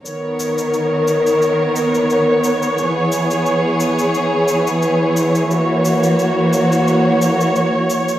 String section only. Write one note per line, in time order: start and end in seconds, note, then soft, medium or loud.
0.05 2.75 D#3 medium
0.05 5.46 B3 medium
0.05 2.75 A#4 medium
0.05 5.46 C#5 medium
2.78 8.19 E3 medium
2.78 5.48 G#4 medium
5.51 8.19 A#3 medium
5.51 8.19 F#4 medium
5.51 8.19 C#5 medium